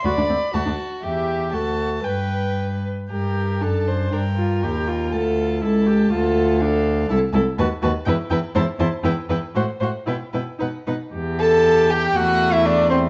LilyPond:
<<
  \new Staff \with { instrumentName = "Violin" } { \time 2/4 \key g \major \tempo 4 = 120 b''4 a''8 r8 | e''4 a''4 | g''4. r8 | \key g \minor g''4 a''4 |
g''4 g''4 | a''4 a''4~ | a''4 f''4 | \key e \minor a''8 a''8 a''8 a''8 |
g''8 g''8 a''8 a''8 | g''8 g''8 fis''8 fis''8 | g''8 g''8 fis''8 fis''8 | r8 a''4 g''8 |
fis''8. e''16 d''8 c''8 | }
  \new Staff \with { instrumentName = "Violin" } { \time 2/4 \key g \major d''4 fis'4 | g'4 a'4 | b'4. r8 | \key g \minor bes'4 a'8 c''8 |
bes'2 | a'4 a'4 | a'4 a'4 | \key e \minor a'8 a'8 b'8 b'8 |
b'8 b'8 c''8 c''8 | b'8 b'8 c''8 c''8 | b'8 b'8 b'8 b'8 | r8 a'4 g'8 |
fis'8. e'16 d'8 c'8 | }
  \new Staff \with { instrumentName = "Viola" } { \time 2/4 \key g \major fis'16 d'16 c'16 r16 fis'16 d'16 r8 | g'4 fis'4 | b'4. r8 | \key g \minor g'4 d'4 |
d'8 f'8 g'8 f'8~ | f'4 e'8 g'8 | f'4 d'4 | \key e \minor e'8 e'8 fis'8 fis'8 |
e'8 e'8 e'8 e'8 | e'8 e'8 fis'8 fis'8 | e'8 e'8 dis'8 dis'8 | g'2 |
a2 | }
  \new Staff \with { instrumentName = "Cello" } { \clef bass \time 2/4 \key g \major d,16 d,16 d,16 r16 d,16 d,16 r8 | e,4 d,4 | g,4. r8 | \key g \minor g,4 fis,4 |
g,4 ees,4 | d,4 cis,4 | d,2 | \key e \minor c,8 c,8 dis,8 dis,8 |
e,8 e,8 e,8 e,8 | e,8 e,8 a,8 a,8 | b,8 b,8 b,8 b,8 | e,2 |
e,2 | }
>>